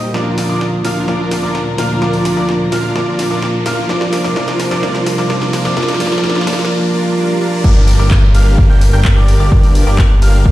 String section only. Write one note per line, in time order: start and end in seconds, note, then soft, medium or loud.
0.00 3.85 A#2 medium
0.00 0.11 G3 medium
0.00 0.11 D#4 medium
0.00 0.12 C5 medium
0.14 3.86 D2 medium
0.14 3.86 F3 medium
0.14 3.85 D4 medium
0.14 3.85 A#4 medium
3.89 6.68 C3 medium
3.89 6.68 D#3 medium
3.89 6.68 G3 medium
3.89 6.68 C5 medium
7.64 10.52 D3 medium
7.64 10.52 G3 medium
7.64 10.52 A#3 medium
7.64 10.52 G4 medium